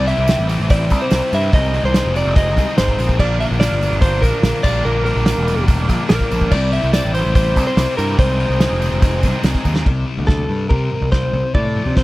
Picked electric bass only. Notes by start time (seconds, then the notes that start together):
Already playing: C2
0.18 C2
0.39 A1
0.60 A1
0.91 C2
1.12 C2
1.33 G2
1.53 C2
1.84 C2
2.05 F1
2.25 F1
2.57 C2
2.78 G#1
2.99 A#1
3.19 A#1
3.51 A#1
3.71 G1
3.91 G1
4.23 A#1
4.43 A#1
4.64 A#1
4.85 A#1
5.16 A#1
5.36 E1
5.57 E1
5.89 A#1
6.10 A#1
6.31 A#1
6.52 C2
6.83 C2
7.05 A1
7.25 A1
7.57 C2
7.77 C2
7.98 G2
8.19 C2
8.49 C2
8.71 F1
8.92 F1
9.23 C2
9.44 C2
9.65 D#2
9.86 C2
10.17 D2
10.49 G2
10.71 C3
11.01 C2
11.33 C2
11.54 A2
11.86 C3